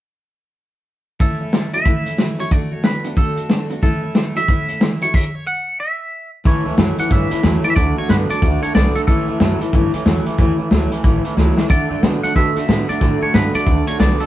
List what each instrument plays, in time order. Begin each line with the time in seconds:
1.19 steel-string acoustic guitar A2 E3 A3 C#4 E4, clean electric guitar A2 E3 A4, kick, closed hi-hat
1.40 steel-string acoustic guitar A3 C#4 E4
1.52 clean electric guitar A2 F#3, steel-string acoustic guitar E3 A3 C#4 E4, snare, closed hi-hat
1.73 clean electric guitar A2 F#3 E5, steel-string acoustic guitar A3 C#4 E4, closed hi-hat
1.84 steel-string acoustic guitar A2 E3 A3 C#4 E4, clean electric guitar A2 E3, kick, closed hi-hat
2.05 steel-string acoustic guitar A3 C#4 E4, closed hi-hat
2.17 clean electric guitar A2 F#3, steel-string acoustic guitar E3 A3 C#4 E4, snare, closed hi-hat
2.37 clean electric guitar A2 F#3 C#5, steel-string acoustic guitar A3 C#4 E4, closed hi-hat
2.50 steel-string acoustic guitar D3 A3 D4 F#4, clean electric guitar D3 A3 D5, kick, closed hi-hat
2.71 steel-string acoustic guitar A3 D4 F#4, clean electric guitar C#5
2.82 steel-string acoustic guitar D3 A3 D4 F#4, clean electric guitar D3 B3 B4, snare, closed hi-hat
3.04 clean electric guitar D3 B3, steel-string acoustic guitar A3 D4 F#4, closed hi-hat
3.16 steel-string acoustic guitar D3 A3 D4 F#4, clean electric guitar D3 A3 A4, kick, closed hi-hat
3.36 steel-string acoustic guitar A3 D4 F#4, closed hi-hat
3.49 steel-string acoustic guitar D3 A3 D4 F#4, clean electric guitar D3 B3, snare, closed hi-hat
3.70 clean electric guitar D3 B3, steel-string acoustic guitar A3 D4 F#4, closed hi-hat
3.82 steel-string acoustic guitar A2 E3 A3 C#4 E4, clean electric guitar A2 E3 A4, kick, closed hi-hat
4.02 steel-string acoustic guitar A3 C#4 E4
4.15 clean electric guitar A2 F#3, steel-string acoustic guitar E3 A3 C#4 E4, snare, closed hi-hat
4.35 clean electric guitar A2 F#3 E5, steel-string acoustic guitar A3 C#4 E4, closed hi-hat
4.48 steel-string acoustic guitar A2 E3 A3 C#4 E4, clean electric guitar A2 E3, kick, closed hi-hat
4.68 steel-string acoustic guitar A3 C#4 E4, closed hi-hat
4.80 clean electric guitar A2 F#3, steel-string acoustic guitar E3 A3 C#4 E4, snare, closed hi-hat
5.01 clean electric guitar A2 F#3 C#5, steel-string acoustic guitar A3 C#4 E4, closed hi-hat
5.14 clean electric guitar E5, kick, crash
5.35 clean electric guitar C#5
5.47 clean electric guitar F#5
5.80 clean electric guitar E5
6.44 upright bass A1, steel-string acoustic guitar A2 E3 A3 C#4 E4, clean electric guitar A2 E3 C#5, kick, closed hi-hat
6.65 upright bass D2, clean electric guitar A2 E3, steel-string acoustic guitar A3 C#4 E4
6.77 upright bass F#2, steel-string acoustic guitar A2 E3 A3 C#4 E4, clean electric guitar A2 F#3, snare, closed hi-hat
6.98 clean electric guitar A2 E3 F#5, steel-string acoustic guitar A3 C#4 E4, muted upright bass stroke, closed hi-hat
7.10 upright bass G2, clean electric guitar A2 E3 E5, steel-string acoustic guitar E3 A3 C#4 E4, kick, closed hi-hat
7.31 clean electric guitar A2 E3, steel-string acoustic guitar A3 C#4 E4, muted upright bass stroke, closed hi-hat
7.43 upright bass E2, steel-string acoustic guitar A2 E3 A3 C#4 E4, clean electric guitar A2 F#3, snare, closed hi-hat
7.63 clean electric guitar A2 E3 D5, steel-string acoustic guitar A3 C#4 E4, closed hi-hat
7.70 clean electric guitar E5
7.75 upright bass D2, steel-string acoustic guitar D3 A3 D4 F#4, clean electric guitar D3 A3 D5, kick, closed hi-hat
7.96 clean electric guitar D3 A3 C#5, steel-string acoustic guitar A3 D4 F#4, muted upright bass stroke
8.08 upright bass G2, steel-string acoustic guitar D3 A3 D4 F#4, clean electric guitar D3 B3 B4, snare, closed hi-hat
8.29 clean electric guitar D3 A3 D5, steel-string acoustic guitar A3 D4 F#4, muted upright bass stroke, closed hi-hat
8.42 upright bass D2, steel-string acoustic guitar D3 A3 D4 F#4, clean electric guitar D3 A3, kick, closed hi-hat
8.62 clean electric guitar D3 A3 C#5, steel-string acoustic guitar A3 D4 F#4, muted upright bass stroke, closed hi-hat
8.74 upright bass B1, steel-string acoustic guitar D3 A3 D4 F#4, clean electric guitar D3 B3 D5, snare, closed hi-hat
8.95 clean electric guitar D3 A3 A4, steel-string acoustic guitar A3 D4 F#4, muted upright bass stroke, closed hi-hat
9.07 steel-string acoustic guitar A2 E3 A3 C#4 E4, clean electric guitar A2 E3 A4, kick, closed hi-hat
9.28 upright bass D2, clean electric guitar A2 E3, steel-string acoustic guitar A3 C#4 E4
9.40 upright bass F#2, steel-string acoustic guitar A2 E3 A3 C#4 E4, clean electric guitar A2 F#3, snare, closed hi-hat
9.60 clean electric guitar A2 E3, steel-string acoustic guitar A3 C#4 E4, muted upright bass stroke, closed hi-hat
9.72 upright bass G2, clean electric guitar A2 E3, steel-string acoustic guitar E3 A3 C#4 E4, kick, closed hi-hat
9.93 clean electric guitar A2 E3, steel-string acoustic guitar A3 C#4 E4, muted upright bass stroke, closed hi-hat
10.05 upright bass E2, steel-string acoustic guitar A2 E3 A3 C#4 E4, clean electric guitar A2 F#3, snare, closed hi-hat
10.25 clean electric guitar A2 E3, steel-string acoustic guitar A3 C#4 E4, muted upright bass stroke, closed hi-hat
10.38 upright bass E2, steel-string acoustic guitar A2 E3 A3 C#4 E4, clean electric guitar A2 E3, kick, closed hi-hat
10.58 clean electric guitar A2 E3, steel-string acoustic guitar A3 C#4 E4, muted upright bass stroke
10.70 upright bass D2, steel-string acoustic guitar A2 E3 A3 C#4 E4, clean electric guitar A2 F#3, snare, closed hi-hat
10.91 clean electric guitar A2 E3, steel-string acoustic guitar A3 C#4 E4, closed hi-hat
11.03 upright bass A1, clean electric guitar A2 E3, steel-string acoustic guitar E3 A3 C#4 E4, kick, closed hi-hat
11.24 clean electric guitar A2 E3, steel-string acoustic guitar A3 C#4 E4, closed hi-hat
11.36 upright bass C#2, steel-string acoustic guitar A2 E3 A3 C#4 E4, clean electric guitar A2 F#3, snare
11.57 clean electric guitar A2 E3, steel-string acoustic guitar A3 C#4 E4, snare
11.70 steel-string acoustic guitar D3 A3 F#4, clean electric guitar D3 A3 D5, kick, closed hi-hat
11.90 upright bass G2, clean electric guitar D3 A3, steel-string acoustic guitar A3 D4 F#4
12.02 upright bass B2, steel-string acoustic guitar D3 A3 D4 F#4, clean electric guitar D3 B3, snare, closed hi-hat
12.23 clean electric guitar D3 A3 F#5, steel-string acoustic guitar A3 D4 F#4, muted upright bass stroke, closed hi-hat
12.35 upright bass B2, clean electric guitar D3 A3 E5, steel-string acoustic guitar D3 A3 D4 F#4, kick, closed hi-hat
12.56 clean electric guitar D3 A3, steel-string acoustic guitar A3 D4 F#4, muted upright bass stroke, closed hi-hat
12.68 upright bass A2, clean electric guitar D3 B3, steel-string acoustic guitar D3 A3 D4 F#4, snare, closed hi-hat
12.88 clean electric guitar D3 A3 D5, steel-string acoustic guitar A3 D4 F#4, muted upright bass stroke, closed hi-hat
13.01 upright bass A2, steel-string acoustic guitar D3 A3 D4 F#4, clean electric guitar D3 A3, kick, closed hi-hat
13.21 clean electric guitar D3 A3 C#5, steel-string acoustic guitar A3 D4 F#4, muted upright bass stroke
13.32 upright bass G2, steel-string acoustic guitar D3 A3 D4 F#4, clean electric guitar D3 B3 B4, snare, closed hi-hat
13.54 clean electric guitar D3 A3 D5, steel-string acoustic guitar A3 D4 F#4, muted upright bass stroke, closed hi-hat
13.66 upright bass D2, steel-string acoustic guitar D3 A3 D4 F#4, clean electric guitar D3 A3, kick, closed hi-hat
13.87 clean electric guitar D3 A3 C#5, steel-string acoustic guitar A3 D4 F#4, closed hi-hat
13.99 upright bass B1, steel-string acoustic guitar D3 A3 D4 F#4, clean electric guitar D3 B3 D5, snare, closed hi-hat
14.19 clean electric guitar D3 A3 A4, steel-string acoustic guitar A3 D4 F#4, closed hi-hat